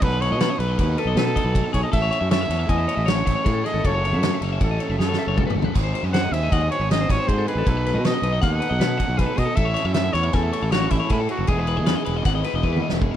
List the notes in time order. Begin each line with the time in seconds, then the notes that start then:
0.02 B1 B2 D#3 F#3 B3 D#4 G#4 A4 B4, kick, ride
0.13 B4
0.21 B4 C#5, snare, ride
0.30 B2 D#5
0.40 B4, snare, ride
0.50 D#5
0.59 B1 B2 D#3 F#3 B3 D#4 A4 B4, snare, ride
0.68 D#5
0.78 D#2 B4 F#5, kick, ride
0.88 D#5
0.98 A4 B4, ride
1.05 B1 D#5
1.16 B2 D#3 F#3 B3 D#4 A4 B4, snare, ride
1.26 B4
1.36 D#5, kick, ride
1.44 B1 B4
1.54 G#4, kick, ride
1.64 A4
1.73 B1 G#4 C#5, kick, ride
1.83 A4 D#5
1.92 A1 A2 E3 A3 C#4 E4 A4 E5, kick, ride
1.96 A4
2.02 C#5
2.11 C#5, ride
2.21 F#2 E5
2.31 C#5 E5, snare, ride
2.41 E5
2.49 E2 A2 E3 A3 C#4 E4 A4 C#5, snare, ride
2.59 E5
2.69 E2 D#5 G#5, kick, ride
2.78 E5
2.88 C#5, ride
2.97 A1 E5
3.06 A2 E3 A3 C#4 E4 C#5, snare, ride
3.10 A4
3.16 C#5
3.26 A1 E5, kick, snare, ride
3.35 C#5
3.45 A2 G#4, kick, snare, ride
3.54 A4
3.64 G#4 D#5, snare, ride
3.74 G#1 A4
3.84 F#1 F#2 C#3 F#3 A3 C#4 A4 C#5, kick, ride
3.95 C#5
4.04 C#5, snare, ride
4.12 F#2 E5
4.23 C#5, snare, ride
4.34 E5
4.41 F#1 F#2 C#3 F#3 A3 C#4 A4 C#5, snare, ride
4.53 E5
4.61 A1 A4 F#5, kick, ride
4.71 D#5
4.80 C#5, ride
4.89 F#1 E5
4.98 F#2 C#3 F#3 A3 C#4 A4 C#5, snare
5.09 C#5
5.13 snare
5.19 E5
5.27 F#1 C#5
5.37 A4, kick, mid tom
5.47 B4, mid tom
5.55 G1 A4
5.62 B4, floor tom
5.75 G#1 G#2 D#3 F#3 C4 D#4 G#4, kick, crash
5.83 C5
5.94 C5, ride
6.03 F#2 D#5
6.13 C5 F#5, snare, ride
6.24 D#5
6.32 D#2 G#2 D#3 F#3 C4 D#4 G#4 C5 E5, snare, ride
6.43 D#5
6.52 D#2 D#5 F#5, kick, ride
6.62 D#5
6.71 C5 C#5, ride
6.79 G#1 D#5
6.89 G#2 D#3 F#3 C4 D#4 G#4 C5 D#5, snare, ride
7.01 C5
7.09 G#1 C#5 D#5, kick, snare, ride
7.19 C5
7.28 G#2 G#4 C5, kick, ride
7.38 A4
7.48 G#4 B4, ride
7.55 A1 A4
7.65 B1 B2 D#3 F#3 B3 D#4 G#4 A4, kick, ride
7.77 B4
7.86 B4, snare, ride
7.94 B2 D#5
8.04 B4 D#5, snare, ride
8.14 D#5
8.22 B1 F#3 B3 D#4 A4 B4, ride
8.26 B2 D#3
8.32 D#5
8.41 D#2 F#5, kick, snare, ride
8.52 D#5
8.60 B4, ride
8.69 B1 D#5
8.80 B2 D#3 F#3 B3 D#4 A4 B4, snare, ride
8.89 B4
8.97 D#5, kick, ride
9.07 B1 B4
9.17 G#4 B4, kick, snare, ride
9.26 A4
9.36 B2 G#4 D#5, kick, ride
9.46 A4
9.56 A1 A2 E3 A3 C#4 E4 A4 E5, kick, ride
9.65 C#5
9.74 C#5, snare, ride
9.85 F#2 E5
9.94 C#5 E5, snare, ride
10.04 E5
10.13 E2 A2 E3 A3 C#4 E4 A4 C#5, snare, ride
10.23 E5
10.33 E2 A4 G#5, kick, snare, ride
10.43 E5
10.53 C#5, ride
10.62 A1 E5
10.71 A2 E3 A3 C#4 E4 F#4 A4 C#5, snare, ride
10.81 C#5
10.91 A1 E4 E5, kick, ride
11.00 C#5
11.09 A2 E4 G#4, kick, ride
11.20 A4
11.28 F#4 G#4, ride
11.38 F#1 A4
11.47 E1 E3 G#3 B3 E4 G#4, kick, ride
11.59 B4
11.67 B4, ride
11.77 E2 D#5
11.86 B4, snare, ride
11.96 D#5
12.05 E1 E3 G#3 B3 E4 B4, ride
12.16 D#5
12.25 G#1 F#5, kick, snare, ride
12.35 D#5
12.44 B4, snare, ride
12.54 E1 D#5
12.63 E2 E3 G#3 B3 E4 B4, kick
12.73 B4, high tom
12.82 D#5
12.89 E1 B4, snare
13.01 G#4, kick, mid tom
13.11 A4